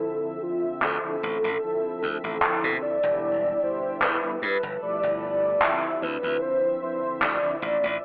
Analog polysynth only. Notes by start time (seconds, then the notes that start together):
Already playing: D3 F3 C4 E4
0.41 D3 F3 C4 E5
1.02 D3 F3 C4 E4
1.61 D3 F3 C4 E4
2.41 D3 F3 C4 E4
3.02 D3 G3 B3 E4
3.61 B2 D3 G3 E4
4.22 D3 G3 B3 E4
4.82 B2 F3 A3 E4
5.61 D3 F3 C4 E4
6.22 D3 F3 C4 E4
6.81 D3 F3 C4 E4
7.42 D3 F3 C4 E4
8.01 D3